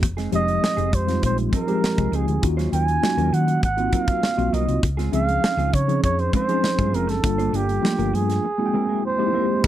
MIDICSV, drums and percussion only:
0, 0, Header, 1, 2, 480
1, 0, Start_track
1, 0, Key_signature, -4, "minor"
1, 0, Tempo, 600601
1, 22, Time_signature, 4, 2, 24, 8
1, 7730, End_track
2, 0, Start_track
2, 0, Title_t, "Drums"
2, 23, Note_on_c, 9, 36, 103
2, 24, Note_on_c, 9, 42, 86
2, 103, Note_off_c, 9, 36, 0
2, 104, Note_off_c, 9, 42, 0
2, 145, Note_on_c, 9, 42, 44
2, 147, Note_on_c, 9, 38, 33
2, 225, Note_off_c, 9, 42, 0
2, 227, Note_off_c, 9, 38, 0
2, 260, Note_on_c, 9, 42, 63
2, 339, Note_off_c, 9, 42, 0
2, 386, Note_on_c, 9, 42, 41
2, 466, Note_off_c, 9, 42, 0
2, 510, Note_on_c, 9, 38, 97
2, 590, Note_off_c, 9, 38, 0
2, 626, Note_on_c, 9, 42, 48
2, 705, Note_off_c, 9, 42, 0
2, 744, Note_on_c, 9, 36, 88
2, 750, Note_on_c, 9, 42, 69
2, 824, Note_off_c, 9, 36, 0
2, 830, Note_off_c, 9, 42, 0
2, 867, Note_on_c, 9, 42, 48
2, 871, Note_on_c, 9, 38, 32
2, 947, Note_off_c, 9, 42, 0
2, 951, Note_off_c, 9, 38, 0
2, 982, Note_on_c, 9, 42, 70
2, 984, Note_on_c, 9, 36, 78
2, 1062, Note_off_c, 9, 42, 0
2, 1064, Note_off_c, 9, 36, 0
2, 1102, Note_on_c, 9, 42, 41
2, 1182, Note_off_c, 9, 42, 0
2, 1221, Note_on_c, 9, 36, 83
2, 1222, Note_on_c, 9, 42, 77
2, 1301, Note_off_c, 9, 36, 0
2, 1302, Note_off_c, 9, 42, 0
2, 1343, Note_on_c, 9, 42, 46
2, 1423, Note_off_c, 9, 42, 0
2, 1470, Note_on_c, 9, 38, 99
2, 1550, Note_off_c, 9, 38, 0
2, 1584, Note_on_c, 9, 36, 87
2, 1585, Note_on_c, 9, 42, 40
2, 1663, Note_off_c, 9, 36, 0
2, 1665, Note_off_c, 9, 42, 0
2, 1705, Note_on_c, 9, 42, 73
2, 1785, Note_off_c, 9, 42, 0
2, 1823, Note_on_c, 9, 42, 43
2, 1902, Note_off_c, 9, 42, 0
2, 1943, Note_on_c, 9, 36, 100
2, 1944, Note_on_c, 9, 42, 86
2, 2023, Note_off_c, 9, 36, 0
2, 2023, Note_off_c, 9, 42, 0
2, 2071, Note_on_c, 9, 42, 46
2, 2073, Note_on_c, 9, 38, 33
2, 2151, Note_off_c, 9, 42, 0
2, 2153, Note_off_c, 9, 38, 0
2, 2183, Note_on_c, 9, 42, 66
2, 2263, Note_off_c, 9, 42, 0
2, 2304, Note_on_c, 9, 42, 43
2, 2384, Note_off_c, 9, 42, 0
2, 2425, Note_on_c, 9, 38, 100
2, 2505, Note_off_c, 9, 38, 0
2, 2544, Note_on_c, 9, 42, 47
2, 2624, Note_off_c, 9, 42, 0
2, 2667, Note_on_c, 9, 42, 68
2, 2747, Note_off_c, 9, 42, 0
2, 2782, Note_on_c, 9, 42, 50
2, 2862, Note_off_c, 9, 42, 0
2, 2900, Note_on_c, 9, 42, 65
2, 2902, Note_on_c, 9, 36, 82
2, 2980, Note_off_c, 9, 42, 0
2, 2982, Note_off_c, 9, 36, 0
2, 3020, Note_on_c, 9, 42, 41
2, 3100, Note_off_c, 9, 42, 0
2, 3137, Note_on_c, 9, 42, 76
2, 3139, Note_on_c, 9, 36, 85
2, 3217, Note_off_c, 9, 42, 0
2, 3219, Note_off_c, 9, 36, 0
2, 3258, Note_on_c, 9, 42, 49
2, 3259, Note_on_c, 9, 36, 89
2, 3338, Note_off_c, 9, 42, 0
2, 3339, Note_off_c, 9, 36, 0
2, 3383, Note_on_c, 9, 38, 98
2, 3463, Note_off_c, 9, 38, 0
2, 3506, Note_on_c, 9, 42, 38
2, 3586, Note_off_c, 9, 42, 0
2, 3627, Note_on_c, 9, 42, 76
2, 3707, Note_off_c, 9, 42, 0
2, 3745, Note_on_c, 9, 42, 43
2, 3825, Note_off_c, 9, 42, 0
2, 3862, Note_on_c, 9, 36, 108
2, 3865, Note_on_c, 9, 42, 81
2, 3941, Note_off_c, 9, 36, 0
2, 3945, Note_off_c, 9, 42, 0
2, 3989, Note_on_c, 9, 42, 46
2, 3991, Note_on_c, 9, 38, 32
2, 4069, Note_off_c, 9, 42, 0
2, 4071, Note_off_c, 9, 38, 0
2, 4101, Note_on_c, 9, 42, 68
2, 4181, Note_off_c, 9, 42, 0
2, 4224, Note_on_c, 9, 42, 43
2, 4304, Note_off_c, 9, 42, 0
2, 4347, Note_on_c, 9, 38, 106
2, 4427, Note_off_c, 9, 38, 0
2, 4470, Note_on_c, 9, 42, 47
2, 4550, Note_off_c, 9, 42, 0
2, 4584, Note_on_c, 9, 36, 93
2, 4594, Note_on_c, 9, 42, 68
2, 4663, Note_off_c, 9, 36, 0
2, 4674, Note_off_c, 9, 42, 0
2, 4709, Note_on_c, 9, 42, 45
2, 4789, Note_off_c, 9, 42, 0
2, 4824, Note_on_c, 9, 36, 85
2, 4825, Note_on_c, 9, 42, 66
2, 4904, Note_off_c, 9, 36, 0
2, 4905, Note_off_c, 9, 42, 0
2, 4946, Note_on_c, 9, 42, 40
2, 5026, Note_off_c, 9, 42, 0
2, 5061, Note_on_c, 9, 36, 84
2, 5063, Note_on_c, 9, 42, 74
2, 5141, Note_off_c, 9, 36, 0
2, 5143, Note_off_c, 9, 42, 0
2, 5185, Note_on_c, 9, 42, 47
2, 5265, Note_off_c, 9, 42, 0
2, 5305, Note_on_c, 9, 38, 91
2, 5385, Note_off_c, 9, 38, 0
2, 5424, Note_on_c, 9, 36, 88
2, 5426, Note_on_c, 9, 42, 39
2, 5504, Note_off_c, 9, 36, 0
2, 5506, Note_off_c, 9, 42, 0
2, 5549, Note_on_c, 9, 42, 69
2, 5629, Note_off_c, 9, 42, 0
2, 5666, Note_on_c, 9, 42, 43
2, 5674, Note_on_c, 9, 38, 31
2, 5746, Note_off_c, 9, 42, 0
2, 5754, Note_off_c, 9, 38, 0
2, 5784, Note_on_c, 9, 36, 105
2, 5788, Note_on_c, 9, 42, 89
2, 5864, Note_off_c, 9, 36, 0
2, 5868, Note_off_c, 9, 42, 0
2, 5910, Note_on_c, 9, 42, 48
2, 5990, Note_off_c, 9, 42, 0
2, 6026, Note_on_c, 9, 42, 66
2, 6106, Note_off_c, 9, 42, 0
2, 6147, Note_on_c, 9, 42, 42
2, 6227, Note_off_c, 9, 42, 0
2, 6273, Note_on_c, 9, 38, 105
2, 6353, Note_off_c, 9, 38, 0
2, 6389, Note_on_c, 9, 42, 45
2, 6469, Note_off_c, 9, 42, 0
2, 6512, Note_on_c, 9, 42, 69
2, 6592, Note_off_c, 9, 42, 0
2, 6630, Note_on_c, 9, 42, 47
2, 6635, Note_on_c, 9, 38, 31
2, 6710, Note_off_c, 9, 42, 0
2, 6715, Note_off_c, 9, 38, 0
2, 7705, Note_on_c, 9, 36, 106
2, 7705, Note_on_c, 9, 49, 88
2, 7730, Note_off_c, 9, 36, 0
2, 7730, Note_off_c, 9, 49, 0
2, 7730, End_track
0, 0, End_of_file